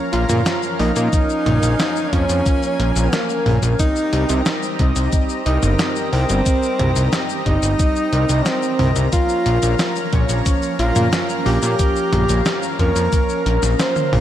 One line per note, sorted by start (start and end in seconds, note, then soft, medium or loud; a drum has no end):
0.00 3.76 C#4 medium
0.00 3.76 A#4 medium
0.00 3.76 F5 medium
0.00 1.10 A#5 medium
0.13 0.25 A#1 medium
0.13 1.09 F3 medium
0.13 1.09 A#3 medium
0.13 1.09 C#4 medium
0.13 0.64 F4 medium
0.13 1.09 A#4 loud
0.13 closed hi-hat medium
0.29 0.42 A#2 medium
0.29 closed hi-hat medium
0.29 mid tom medium
0.29 shaker medium
0.46 snare loud
0.46 closed hi-hat loud
0.46 shaker soft
0.63 shaker soft
0.79 0.92 A#1 medium
0.79 2.15 D#4 loud
0.79 open hi-hat medium
0.96 1.09 A#2 medium
0.96 closed hi-hat medium
0.96 shaker medium
1.13 2.09 F3 medium
1.13 2.09 A#3 medium
1.13 2.09 C#4 medium
1.13 2.09 A#4 medium
1.13 3.77 G#5 medium
1.13 kick loud
1.13 closed hi-hat medium
1.13 shaker soft
1.30 shaker soft
1.46 1.59 A#1 medium
1.46 closed hi-hat medium
1.46 mid tom medium
1.63 1.75 A#1 medium
1.63 closed hi-hat medium
1.63 shaker medium
1.80 snare loud
1.80 closed hi-hat medium
1.80 shaker soft
1.96 shaker soft
2.13 2.25 F2 medium
2.13 2.76 F3 loud
2.13 2.76 A#3 medium
2.13 2.76 C#4 medium
2.13 3.14 C#4 loud
2.13 2.76 C#5 loud
2.13 kick medium
2.13 closed hi-hat medium
2.29 2.42 F2 medium
2.29 closed hi-hat medium
2.29 shaker medium
2.46 kick loud
2.46 closed hi-hat medium
2.46 shaker soft
2.63 shaker soft
2.80 2.92 A#1 medium
2.80 3.76 F3 medium
2.80 3.76 A#3 medium
2.80 3.76 C#4 medium
2.80 3.76 A#4 loud
2.80 closed hi-hat medium
2.96 3.08 A#1 medium
2.96 closed hi-hat medium
2.96 shaker medium
3.13 3.64 A#3 medium
3.13 snare loud
3.13 closed hi-hat medium
3.13 shaker soft
3.30 shaker soft
3.46 3.58 A#1 loud
3.46 mid tom medium
3.46 open hi-hat medium
3.63 3.75 A#1 medium
3.63 closed hi-hat medium
3.63 shaker medium
3.79 4.75 G3 medium
3.79 4.75 C4 medium
3.79 9.09 C4 medium
3.79 4.75 D#4 medium
3.79 4.66 D#4 loud
3.79 9.09 G4 medium
3.79 4.75 A#4 medium
3.79 9.09 D#5 medium
3.79 14.20 A#5 medium
3.79 kick loud
3.79 closed hi-hat medium
3.79 shaker medium
3.96 shaker soft
4.13 4.25 C2 medium
4.13 closed hi-hat medium
4.29 4.42 C2 medium
4.29 closed hi-hat medium
4.29 shaker medium
4.46 snare loud
4.46 closed hi-hat medium
4.46 shaker medium
4.63 shaker soft
4.79 4.92 C2 loud
4.79 5.42 G3 loud
4.79 5.42 C4 medium
4.79 5.42 D#4 medium
4.79 5.42 D#5 loud
4.79 kick loud
4.79 closed hi-hat medium
4.96 5.08 C2 medium
4.96 closed hi-hat medium
4.96 shaker medium
5.13 kick loud
5.13 closed hi-hat medium
5.13 shaker medium
5.29 shaker soft
5.46 5.58 C2 medium
5.46 6.42 G3 loud
5.46 6.42 C4 medium
5.46 5.97 D#4 medium
5.46 6.42 D#4 medium
5.46 6.42 A#4 loud
5.46 closed hi-hat medium
5.63 5.75 G1 medium
5.63 closed hi-hat medium
5.63 mid tom medium
5.63 shaker medium
5.79 snare loud
5.79 closed hi-hat medium
5.79 shaker soft
5.96 shaker soft
6.13 6.25 C2 loud
6.13 7.33 C4 loud
6.13 open hi-hat medium
6.29 6.42 G1 medium
6.29 closed hi-hat medium
6.29 shaker medium
6.46 7.42 G3 medium
6.46 7.42 C4 medium
6.46 7.42 D#4 medium
6.46 7.42 A#4 medium
6.46 kick loud
6.46 closed hi-hat medium
6.46 shaker medium
6.63 shaker soft
6.79 6.92 C2 loud
6.79 closed hi-hat medium
6.79 mid tom medium
6.96 7.09 C2 medium
6.96 closed hi-hat medium
6.96 shaker medium
7.13 snare loud
7.13 closed hi-hat medium
7.13 shaker medium
7.29 shaker soft
7.46 7.58 G1 medium
7.46 8.09 G3 loud
7.46 8.09 C4 medium
7.46 8.48 D#4 loud
7.46 8.09 D#4 medium
7.46 8.09 D#5 loud
7.46 kick medium
7.46 closed hi-hat medium
7.63 7.75 G1 medium
7.63 closed hi-hat medium
7.63 shaker medium
7.79 kick loud
7.79 closed hi-hat medium
7.79 shaker medium
7.96 shaker soft
8.13 8.25 C2 medium
8.13 9.09 G3 medium
8.13 9.09 C4 medium
8.13 9.09 D#4 medium
8.13 9.09 A#4 loud
8.13 closed hi-hat medium
8.29 8.42 C2 medium
8.29 closed hi-hat medium
8.29 shaker medium
8.46 8.97 C4 loud
8.46 snare loud
8.46 closed hi-hat medium
8.46 shaker medium
8.63 shaker soft
8.79 8.92 C2 medium
8.79 mid tom medium
8.79 open hi-hat medium
8.96 9.09 C2 medium
8.96 closed hi-hat medium
8.96 shaker medium
9.13 10.09 F3 medium
9.13 10.09 A#3 medium
9.13 14.20 C#4 medium
9.13 10.09 C#4 medium
9.13 9.99 F4 loud
9.13 14.20 A#4 medium
9.13 10.09 A#4 medium
9.13 14.20 F5 medium
9.13 kick loud
9.13 closed hi-hat medium
9.13 shaker medium
9.29 shaker soft
9.46 9.59 A#1 loud
9.46 closed hi-hat medium
9.63 9.75 A#1 medium
9.63 closed hi-hat medium
9.63 shaker medium
9.79 snare loud
9.79 closed hi-hat loud
9.79 shaker medium
9.96 shaker soft
10.13 10.25 A#1 loud
10.13 10.76 F3 loud
10.13 10.75 A#3 medium
10.13 10.76 C#4 medium
10.13 10.75 C#5 loud
10.13 kick loud
10.13 closed hi-hat medium
10.29 10.42 A#1 medium
10.29 closed hi-hat medium
10.29 shaker medium
10.46 kick loud
10.46 closed hi-hat medium
10.46 shaker medium
10.63 shaker soft
10.79 10.92 A#1 medium
10.79 11.76 F3 medium
10.79 11.76 A#3 medium
10.79 11.76 C#4 medium
10.79 11.30 F4 medium
10.79 11.76 A#4 loud
10.79 closed hi-hat medium
10.96 11.08 A#2 medium
10.96 closed hi-hat medium
10.96 mid tom medium
10.96 shaker medium
11.13 snare loud
11.13 closed hi-hat medium
11.13 shaker medium
11.29 shaker soft
11.46 11.58 A#1 loud
11.46 12.66 G4 loud
11.46 open hi-hat medium
11.63 11.75 A#2 medium
11.63 closed hi-hat medium
11.63 shaker medium
11.79 12.76 F3 medium
11.79 12.76 A#3 medium
11.79 12.75 C#4 medium
11.79 12.76 A#4 medium
11.79 kick loud
11.79 closed hi-hat loud
11.79 shaker medium
11.96 shaker soft
12.13 12.25 A#1 medium
12.13 closed hi-hat medium
12.13 mid tom medium
12.29 12.42 A#1 medium
12.29 closed hi-hat medium
12.29 shaker medium
12.46 snare loud
12.46 closed hi-hat loud
12.46 shaker medium
12.63 shaker soft
12.79 12.92 F2 loud
12.79 13.42 F3 loud
12.79 13.42 A#3 medium
12.79 13.42 C#4 medium
12.79 13.66 A#4 loud
12.79 13.42 C#5 loud
12.79 kick medium
12.79 closed hi-hat medium
12.96 13.08 F2 medium
12.96 closed hi-hat medium
12.96 shaker medium
13.13 kick loud
13.13 closed hi-hat medium
13.13 shaker medium
13.29 shaker soft
13.46 13.58 A#1 medium
13.46 14.20 F3 loud
13.46 14.20 A#3 medium
13.46 14.20 C#4 medium
13.46 14.20 A#4 loud
13.46 closed hi-hat medium
13.63 13.75 A#1 medium
13.63 snare soft
13.63 closed hi-hat medium
13.63 shaker medium
13.80 14.20 C5 medium
13.80 snare loud
13.80 closed hi-hat loud
13.80 shaker medium
13.96 high tom medium
13.96 shaker soft
14.13 14.20 A#1 loud
14.13 mid tom medium
14.13 open hi-hat medium
14.13 mid tom medium